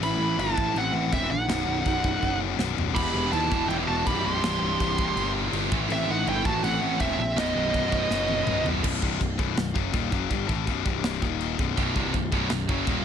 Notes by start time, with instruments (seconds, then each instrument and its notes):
0.01 picked electric bass A1, lead electric guitar B5, crash
0.06 distorted electric guitar A2 E3, lead electric guitar E4
0.15 picked electric bass A1, distorted electric guitar A2 E3
0.21 distorted electric guitar A2 E3
0.28 distorted electric guitar A2 E3
0.37 picked electric bass G1, distorted electric guitar A2 E3, lead electric guitar E4 A5, crash
0.45 distorted electric guitar A2 E3
0.53 distorted electric guitar A2 E3
0.57 picked electric bass A1, distorted electric guitar A2, kick
0.61 distorted electric guitar E3
0.69 distorted electric guitar A2 E3
0.74 picked electric bass A1, distorted electric guitar A2 E3, lead electric guitar F#5, crash
0.79 lead electric guitar C4
0.84 distorted electric guitar A2 E3
0.92 picked electric bass A1, distorted electric guitar A2 E3
0.99 distorted electric guitar A2 E3
1.07 distorted electric guitar A2 E3
1.12 picked electric bass E1, distorted electric guitar A2, lead electric guitar C4 E5, kick, crash
1.16 distorted electric guitar E3
1.22 distorted electric guitar A2 E3
1.30 picked electric bass A#1, lead electric guitar D#4 F#5
1.48 picked electric bass B0, distorted electric guitar B1 F#2, snare, crash
1.56 distorted electric guitar B1 F#2
1.63 picked electric bass B0, distorted electric guitar B1 F#2
1.72 distorted electric guitar B1 F#2
1.79 distorted electric guitar B1 F#2
1.85 picked electric bass B0, distorted electric guitar B1 F#2, kick, crash
1.95 distorted electric guitar B1 F#2
2.03 distorted electric guitar B1 F#2, kick
2.10 distorted electric guitar B1 F#2
2.17 distorted electric guitar B1 F#2
2.22 picked electric bass F#1, distorted electric guitar B1 F#2, kick
2.33 distorted electric guitar B1 F#2
2.41 distorted electric guitar B1 F#2
2.48 distorted electric guitar B1 F#2
2.57 picked electric bass B0, distorted electric guitar B1 F#2, snare
2.65 distorted electric guitar B1 F#2
2.73 distorted electric guitar B1 F#2
2.78 picked electric bass B0, distorted electric guitar B1 F#2, floor tom
2.88 distorted electric guitar B1 F#2
2.94 picked electric bass E1, distorted electric guitar E2 B2 E3, lead electric guitar G4 B5, kick, crash
3.02 distorted electric guitar E2 B2
3.11 distorted electric guitar E2 B2
3.15 picked electric bass E1, distorted electric guitar E2
3.19 distorted electric guitar B2
3.25 distorted electric guitar E2 B2
3.32 picked electric bass D#2, distorted electric guitar E2 B2, lead electric guitar E4 A5, crash
3.42 distorted electric guitar E2 B2
3.49 picked electric bass E1, distorted electric guitar E2 B2 E3, kick
3.57 distorted electric guitar E2 B2
3.66 picked electric bass E1, distorted electric guitar E2 B2, lead electric guitar E4 G5
3.70 distorted electric guitar E2 B2, crash
3.80 distorted electric guitar E2 B2
3.87 picked electric bass E1, distorted electric guitar E2 B2, lead electric guitar F#4 A5
3.96 distorted electric guitar E2 B2
4.04 picked electric bass B0, distorted electric guitar E2 B2, lead electric guitar G4 B5, kick, crash
4.11 distorted electric guitar E2 B2
4.20 distorted electric guitar E2 B2
4.24 picked electric bass B0, distorted electric guitar E2 B2, lead electric guitar G4 C6
4.35 distorted electric guitar E2 B2
4.43 picked electric bass C1, distorted electric guitar C2 G2 C3, snare, crash
4.49 distorted electric guitar C2 G2
4.58 picked electric bass C1, distorted electric guitar C2 G2
4.66 distorted electric guitar C2 G2
4.72 distorted electric guitar C2 G2
4.80 picked electric bass C1, distorted electric guitar C2 G2, kick, crash
4.89 distorted electric guitar C2 G2
4.96 distorted electric guitar C2 G2 C3, kick
5.04 distorted electric guitar C2 G2
5.11 distorted electric guitar C2 G2
5.16 picked electric bass G1, distorted electric guitar C2 G2, crash
5.26 distorted electric guitar C2 G2
5.34 distorted electric guitar C2 G2
5.41 distorted electric guitar C2 G2
5.49 picked electric bass G1, distorted electric guitar C2 G2
5.53 distorted electric guitar C2 G2, crash
5.65 distorted electric guitar C2 G2
5.72 picked electric bass A1, distorted electric guitar A2 E3 A3, kick
5.80 distorted electric guitar A2 E3
5.87 picked electric bass A1, distorted electric guitar A2 E3, crash
5.92 distorted electric guitar A2 E3, lead electric guitar C4 E5
6.02 distorted electric guitar A2 E3
6.08 picked electric bass A1, distorted electric guitar A2 E3, lead electric guitar D#4 F#5
6.18 distorted electric guitar A2 E3
6.26 picked electric bass G1, distorted electric guitar A2 E3 A3, lead electric guitar G5, crash
6.30 distorted electric guitar A2 E3, lead electric guitar E4
6.42 picked electric bass A1, distorted electric guitar A2 E3, kick
6.46 distorted electric guitar A2 E3, lead electric guitar F#4 A5
6.57 distorted electric guitar A2 E3
6.63 picked electric bass A1, distorted electric guitar A2 E3, lead electric guitar C4 F#5, crash
6.72 distorted electric guitar A2 E3
6.80 picked electric bass A1, distorted electric guitar A2 E3
6.88 distorted electric guitar A2 E3
6.95 distorted electric guitar A2 E3
7.00 picked electric bass E1, distorted electric guitar A2, lead electric guitar C4 E5, kick, crash
7.04 distorted electric guitar E3
7.10 distorted electric guitar A2 E3
7.18 picked electric bass A#1, lead electric guitar C4 E5
7.36 picked electric bass B0, distorted electric guitar B1 F#2 B2, lead electric guitar B3 D#5, snare, crash
7.44 distorted electric guitar B1 F#2
7.52 picked electric bass B0, distorted electric guitar B1 F#2
7.60 distorted electric guitar B1 F#2
7.67 distorted electric guitar B1 F#2
7.74 picked electric bass B0, distorted electric guitar B1 F#2, kick, crash
7.81 distorted electric guitar B1 F#2
7.89 distorted electric guitar B1 F#2 B2, kick
7.96 distorted electric guitar B1 F#2
8.05 distorted electric guitar B1 F#2
8.11 picked electric bass F#1, distorted electric guitar B1 F#2, snare
8.20 distorted electric guitar B1 F#2
8.27 distorted electric guitar B1 F#2, high tom
8.35 distorted electric guitar B1 F#2
8.43 distorted electric guitar B1 F#2
8.47 picked electric bass B0, distorted electric guitar B1, mid tom
8.52 distorted electric guitar F#2
8.58 distorted electric guitar B1 F#2
8.64 picked electric bass B0, distorted electric guitar B1 F#2, floor tom
8.73 distorted electric guitar B1 F#2
8.82 picked electric bass B0, distorted electric guitar B1 F#2 B2, kick, crash, china
9.02 picked electric bass C1, distorted electric guitar C2 G2 C3, kick
9.19 picked electric bass B0, distorted electric guitar B1 F#2, kick, china
9.38 picked electric bass B0, distorted electric guitar B1 F#2 B2, kick
9.55 picked electric bass B0, distorted electric guitar B1 F#2, snare, china
9.74 picked electric bass F#1, distorted electric guitar F#2 C#3 F#3, kick
9.92 picked electric bass D#1, distorted electric guitar D#2 A#2 D#3, kick, china
10.12 picked electric bass F#1, distorted electric guitar F#2 C#3 F#3, kick
10.30 picked electric bass G1, distorted electric guitar G2 D3 G3, kick, china
10.46 picked electric bass A1, distorted electric guitar A2 E3 A3, kick
10.66 picked electric bass B0, distorted electric guitar B1 F#2 B2, kick, china
10.84 picked electric bass C1, distorted electric guitar C2 G2 C3, kick
11.04 snare, china
11.21 picked electric bass D#1, distorted electric guitar D#2 A#2 D#3, kick
11.41 china
11.58 picked electric bass B0, distorted electric guitar B1 F#2 B2, kick
11.77 picked electric bass B0, distorted electric guitar B1 F#2 B2, kick, china
11.95 picked electric bass C1, distorted electric guitar C2 G2 C3, kick
12.13 picked electric bass B0, distorted electric guitar B1 F#2, kick, china
12.32 picked electric bass B0, distorted electric guitar B1 F#2 B2, kick
12.50 picked electric bass B0, distorted electric guitar B1 F#2, snare, china
12.69 picked electric bass F#1, distorted electric guitar F#2 C#3 F#3, kick
12.87 picked electric bass D#1, distorted electric guitar D#2 A#2 D#3, kick, china